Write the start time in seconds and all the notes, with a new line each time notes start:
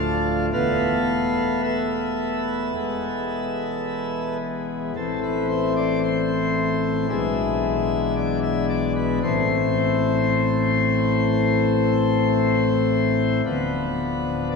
Already playing: D1 D2 F3 A3 D4 F5
0.53 E1 E2 E3 A3 B3 A4 B4 F5
1.63 A4 B4 E5
2.75 E1 E2 E3 G#3 B3
4.96 A1 A2 E3 A3 C4 A4
5.23 B4
5.49 C5
5.76 D5
6.03 C5
7.09 B1 B2 E3 G#3 D4 E5
8.16 D5
8.43 E5
8.69 D5
8.96 B4
9.23 A1 A2 E3 A3 C4 C5
13.45 D1 D2 F3 B3 D4 B4
14.51 D5